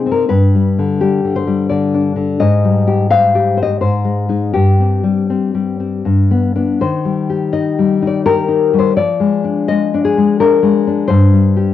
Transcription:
nylon-string guitar
Already playing: C3 D#4
0.06 C4
0.11 A#4
0.29 G2 B4
0.55 G3
0.79 D3
1.01 G3 G4
1.25 D3
1.36 C5
1.47 G3
1.70 D3 D5
1.94 D4
2.16 D3
2.40 G#2 D#5
2.65 G3
2.87 G4
3.11 C5 F5
3.35 G4
3.57 C5
3.63 D#5
3.81 G#2 C5
4.05 G#3
4.29 G#3 D#4
4.53 G2 G4
4.80 C4
5.04 G3
5.30 C4
5.54 G3
5.80 C4
6.05 G2
6.31 B3
6.56 B3 D4
6.81 D#3 C5
7.05 G3
7.30 G4
7.53 D#4 D#5
7.79 G3
8.02 D#4
8.07 D5
8.26 G4 A#4
8.48 D#4
8.73 G3
8.79 C5
8.97 F3 D5
9.20 G#3
9.44 D4
9.68 G#3 D#5
9.94 D4
10.05 G#4
10.18 G#3
10.40 D4 A#4
10.63 G#3
10.87 D4
11.08 G2 C5
11.33 G3
11.57 G4

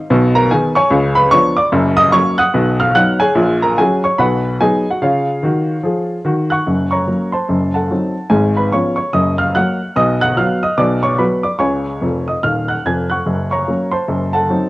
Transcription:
upright piano
0.10 B1 B2
0.35 A#4 A#5
0.51 D#3 B3 D#4 G#4 G#5
0.75 C#5 G#5 C#6
0.91 C#2 C#3
1.15 B4 B5
1.31 F3 B3 D4 C#5 C#6
1.57 D5 D6
1.72 F#1 F#2
1.97 D#5 D#6
2.12 F#3 A#3 C#4 C#5 C#6
2.38 F#5 D#6 F#6
2.54 B1 B2
2.80 F5 F6
2.95 F#3 B3 D#4 F#5 F#6
3.20 G#4 C#5 G#5
3.35 A#1 A#2
3.62 A#4 A#5
3.78 F#3 C#4 F#4 G#4 G#5
4.04 C#5 C#6
4.18 B1 B2 B4 F#5 B5
4.61 F#3 B3 D#4 G#4 D#5 G#5
4.90 F#4 F#5
5.02 C#3 F4 C#5 F5
5.43 D#3 F#4
5.83 F3 G#4
6.25 D#3 F#4
6.50 F#5 C#6 F#6
6.67 F#1 F#2
6.91 C#5 A#5 C#6
7.07 F#3 A#3 C#4
7.32 C5 A5 C6
7.49 F#1 F#2
7.74 A4 F#5 A5
7.91 F#3 C4 D#4
8.30 G#1 G#2 G#4 G#5
8.57 B4 B5
8.72 F3 B3 C#4 C#5 C#6
8.96 C#5 C#6
9.13 F#1 F#2 D#5 D#6
9.38 F5 F6
9.55 F#3 A#3 F#4 F#5 F#6
9.96 B1 B2 D#5 D#6
10.21 F#5 F#6
10.37 F#3 B3 F#4 F5 F6
10.63 D#5 D#6
10.78 B1 B2 D5 D6
11.03 C#5 C#6
11.18 F#3 B3 F#4 B4 B5
11.43 D5 D6
11.59 C#2 C#3 C#5 G#5 C#6
12.01 F1 F2
12.28 D#5 D#6
12.43 D#1 D#2 F5 F6
12.68 F#5 F#6
12.86 F1 F2 G#5 G#6
13.10 F#5 C#6 F#6
13.26 F#1 F#2
13.51 C#5 A#5 C#6
13.68 F#3 A#3 C#4
13.92 C5 A5 C6
14.08 F#1 F#2
14.33 A4 F#5 A5
14.50 F#3 C4 D#4

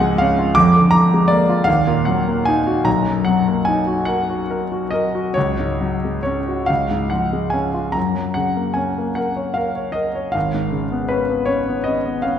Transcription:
grand piano
Already playing: C#2 G#2 F3 F#5 G#5
0.01 G#3
0.18 C#4 F5
0.39 F4
0.55 F2 D6
0.76 D3
0.91 F3 A#5
1.14 G#3
1.28 A#3 D5
1.49 F4
1.64 D#2 F5
1.87 A#2
2.05 F#3 F#5
2.28 A#3
2.45 D#4 G#5
2.67 F#4
2.84 B1 A#5
3.08 F#2
3.25 F#3 F#5
3.48 A#3
3.65 D#4 G#5
3.87 F#4
4.05 A#4 F#5
4.30 F#4
4.50 A#4
4.72 F#4
4.91 A#4 D#5
5.15 F#4
5.34 C#2 C#5
5.60 G#2
5.81 F#3
6.05 G#3
6.23 C#4 C#5
6.48 F#4
6.66 C#2 F5
6.91 G#2
7.10 F3 F#5
7.33 G#3
7.50 C#4 G#5
7.74 F4
7.92 F#2 A#5
8.15 F#3
8.34 C#3 F#5
8.57 A#3
8.74 C#4 G#5
8.98 A#3
9.15 A#4 F#5
9.36 C#5
9.54 A#4 F5
9.76 C#5
9.92 A#4 D#5
10.15 C#5
10.32 G#1 F5
10.54 G#2
10.72 C#3
10.92 B3
11.09 C#4 B4
11.30 B3
11.45 C#4 C#5
11.68 B3
11.84 C#4 D#5
12.05 B3
12.22 C#4 F5

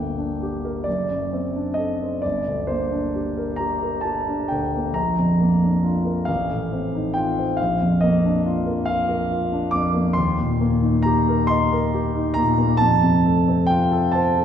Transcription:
grand piano
Already playing: G1 D2 A#3 G5
0.19 D4
0.43 G4
0.65 A#4
0.84 F#1 D5
1.10 F#2
1.33 C4
1.56 D4
1.74 A4 D#5
2.02 C5
2.22 G1 D5
2.47 D2
2.67 A#3 C5
2.92 D4
3.16 G4
3.37 A#4
3.56 G4 A#5
3.83 A#4
4.01 G4 A5
4.28 D4
4.48 D2 G5
4.76 A#3
4.93 A#1 A#5
5.19 F2
5.40 A#3
5.63 D4
5.84 F4
6.05 A#4
6.25 A1 F5
6.51 A2
6.73 C4
6.95 D#4
7.14 F4 G5
7.39 C5
7.57 A#1 F5
7.81 F2
8.01 A#3 D#5
8.25 D4
8.46 F4
8.66 A#4
8.86 F4 F5
9.09 A#4
9.31 F4
9.52 D4
9.71 F2 D6
9.94 A#3
10.13 D#2 C6
10.38 A#2
10.61 A#3
10.82 D#4
11.03 G4 A#5
11.29 A#4
11.47 D#5 C6
11.72 A#4
11.94 G4
12.15 D#4
12.34 A#2 A#5
12.58 A#3
12.77 F2 A5
13.03 C3
13.26 A3
13.48 C4
13.67 F4 G5
13.92 A4
14.12 C5 A5
14.37 A4

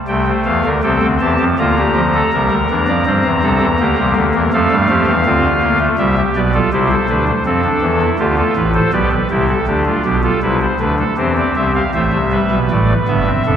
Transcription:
pipe organ
0.08 C2 C3 A3 G5
0.27 C5
0.45 E2 E3 F5
0.65 D2 D3 A#4
0.83 C2 C3 C4 A4 G5
1.02 D2 D3
1.21 E2 E3 G4 A5
1.40 F2 F3
1.59 D2 D3 A#3 F4 A#5
1.78 G4
1.95 F3
2.14 A4
2.33 C2 C3 G3 A#4
2.51 D2 D3
2.70 E2 E3 D4
2.88 F2 F3 D5
3.06 G2 G3 C4 C5
3.25 E2 E3
3.43 C2 C3 A4
3.61 E2 E3
3.79 D2 D3 A#3 G4
3.98 C2 C3
4.16 D2 D3
4.34 E2 E3 A#4
4.53 F2 F3 A3 A4 F5
4.71 G2 G3
4.89 F2 F3 G4
5.07 E2 E3
5.26 D2 D3 C4 F4
5.62 A#3
5.80 A3
5.98 C2 C3 G3 G4 E5
6.17 G4
6.36 B1 B2 B4 D5
6.54 F4 A4
6.73 C2 C3 E4 G4 C5
6.91 A4
7.09 D2 D3 D4 B4
7.28 C5
7.46 F2 F3 C4 A4
7.64 D4
7.82 E2 E3
8.01 E4
8.19 D2 D3 F4 G4
8.37 A4
8.56 A1 A2 B4
8.74 A4 C5
8.93 B1 B2 G4 B4 D5
9.11 B4
9.30 C2 C3 E4 G4
9.49 A4
9.67 D2 D3 D4 G4
9.86 F4
10.05 B1 B2 G4
10.23 F4 A4
10.42 C2 C3 E4 B4
10.61 C5
10.80 D2 D3 D4 B4
10.99 A4
11.17 E2 E3 C4 G4 C5
11.37 D5
11.56 C2 C3 E5
11.75 F5
11.94 A1 A2 A3 C5 E5
12.13 C2 C3
12.32 G3 B4
12.51 B1 B2
12.70 A1 A2 A3 D5
13.08 G1 G2 B3 E5
13.27 C4
13.45 F1 F2 D4 A4

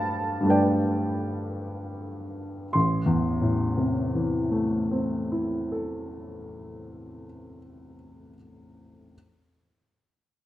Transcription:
grand piano
Already playing: G2 G3 A3 D4 B4 F5 G5 A5 B5
0.40 G2 G3
0.45 A3 D4
0.49 B4 D5 G5
2.73 A1 C6
3.06 E2
3.42 A2
3.77 C3
4.15 E3
4.51 A3
4.91 C4
5.32 E4
5.72 A4

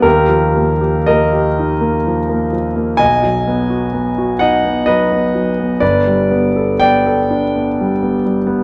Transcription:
grand piano
0.02 D#2 G4 A#4
0.28 F3
0.56 A#3
0.81 G4
1.06 A#3 A#4 D#5
1.33 G4
1.59 D#4
1.81 A#3
2.07 F3
2.29 A#3
2.53 F3
2.76 A#3
2.97 B1 D#5 G#5
3.23 F#3
3.48 B3
3.70 F#4
3.93 B3
4.18 F#4
4.39 D#4 D#5 F#5
4.65 B3
4.86 F#3 B4 D#5
5.12 B3
5.35 F#3
5.59 B3
5.80 G1 B4 D5
6.07 G3
6.31 B3
6.56 A4
6.80 B3 D5 G5
7.06 A4
7.31 D4
7.56 B3
7.81 G3
8.03 B3
8.26 G3
8.47 B3

